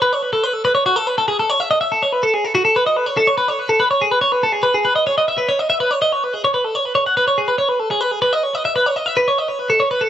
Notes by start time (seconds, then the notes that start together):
0.02 B4
0.13 C#5
0.22 B4
0.33 A4
0.44 B4
0.53 A4
0.65 B4
0.75 C#5
0.86 F#4
0.96 A4
1.07 B4
1.18 A4
1.28 G#4
1.39 A4
1.50 C#5
1.60 E5
1.71 D#5
1.81 E5
1.92 A4
2.03 C#5
2.13 B4
2.23 A4
2.34 G#4
2.45 A4
2.55 F#4
2.65 A4
2.76 B4
2.87 D#5
2.97 B4
3.06 C#5
3.17 A4
3.27 C#5
3.38 B4
3.48 C#5
3.59 B4
3.69 A4
3.80 B4
3.91 C#5
4.02 G#4
4.11 B4
4.21 C#5
4.32 B4
4.43 A4
4.52 G#4
4.63 B4
4.74 G#4
4.85 B4
4.96 D#5
5.07 C#5
5.18 D#5
5.28 E5
5.38 B4
5.49 C#5
5.59 D#5
5.70 E5
5.80 B4
5.91 C#5
6.02 D#5
6.12 C#5
6.24 B4
6.34 G#4
6.45 C#5
6.54 B4
6.65 A4
6.75 C#5
6.85 B4
6.95 C#5
7.06 F#5
7.17 B4
7.28 C#5
7.38 G#4
7.48 B4
7.58 C#5
7.69 B4
7.80 A4
7.91 G#4
8.01 B4
8.12 G#4
8.22 B4
8.33 D#5
8.43 C#5
8.55 D#5
8.65 E5
8.76 B4
8.86 C#5
8.96 D#5
9.06 E5
9.17 B4
9.28 C#5
9.38 D#5
9.48 C#5
9.59 B4
9.70 A4
9.80 C#5
9.91 B4
10.01 A4